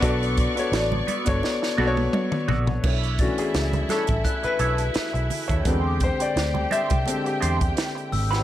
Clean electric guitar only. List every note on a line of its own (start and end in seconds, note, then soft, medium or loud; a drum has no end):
0.02 0.35 B3 medium
0.02 0.36 F#4 medium
0.02 0.36 A4 medium
0.02 0.36 D5 medium
0.56 muted clean electric guitar stroke soft
0.73 0.96 B3 medium
0.73 0.91 F#4 medium
0.73 0.91 A4 medium
0.73 0.90 D5 medium
0.92 muted clean electric guitar stroke soft
1.07 1.26 B3 medium
1.07 1.27 F#4 medium
1.07 1.26 A4 medium
1.07 1.26 D5 medium
1.27 muted clean electric guitar stroke soft
1.43 muted clean electric guitar stroke soft
1.62 muted clean electric guitar stroke soft
1.78 2.01 B3 medium
1.78 1.96 F#4 medium
1.78 1.96 A4 medium
1.78 1.95 D5 medium
1.96 muted clean electric guitar stroke soft
2.13 muted clean electric guitar stroke soft
2.32 muted clean electric guitar stroke soft
2.48 2.71 B3 medium
2.48 2.68 F#4 medium
2.48 2.68 A4 medium
2.48 2.67 D5 medium
2.68 muted clean electric guitar stroke soft
2.84 3.17 D4 medium
2.84 3.17 E4 medium
2.84 3.17 A4 medium
2.84 3.18 C#5 medium
3.38 muted clean electric guitar stroke soft
3.54 muted clean electric guitar stroke soft
3.74 muted clean electric guitar stroke soft
3.90 4.13 D4 medium
3.90 4.09 E4 medium
3.90 4.08 A4 medium
3.90 4.07 C#5 medium
4.08 muted clean electric guitar stroke soft
4.24 muted clean electric guitar stroke soft
4.43 muted clean electric guitar stroke soft
4.59 4.82 D4 medium
4.59 4.78 E4 medium
4.59 4.77 A4 medium
4.59 4.76 C#5 medium
4.78 muted clean electric guitar stroke soft
4.94 muted clean electric guitar stroke soft
5.13 muted clean electric guitar stroke soft
5.48 5.64 D4 medium
5.48 5.65 E4 medium
5.48 5.66 A4 medium
5.48 5.66 C#5 medium
5.65 5.79 G3 medium
5.65 5.80 C#4 medium
5.65 5.79 F#4 medium
5.65 5.80 B4 medium
5.79 5.98 G#3 medium
5.79 5.98 D4 medium
5.79 5.99 G4 medium
5.79 5.99 C5 medium
6.20 muted clean electric guitar stroke soft
6.36 muted clean electric guitar stroke soft
6.54 muted clean electric guitar stroke soft
6.71 6.94 G#3 medium
6.71 6.90 D4 medium
6.71 6.89 G4 medium
6.71 6.89 C5 medium
6.90 muted clean electric guitar stroke soft
7.06 muted clean electric guitar stroke soft
7.24 muted clean electric guitar stroke soft
7.41 7.64 G#3 medium
7.41 7.60 D4 medium
7.41 7.59 G4 medium
7.41 7.59 C5 medium
7.60 muted clean electric guitar stroke soft
7.76 muted clean electric guitar stroke soft
7.95 muted clean electric guitar stroke soft
8.31 8.43 G#3 medium
8.31 8.43 D4 medium
8.31 8.43 G4 medium
8.31 8.43 C5 medium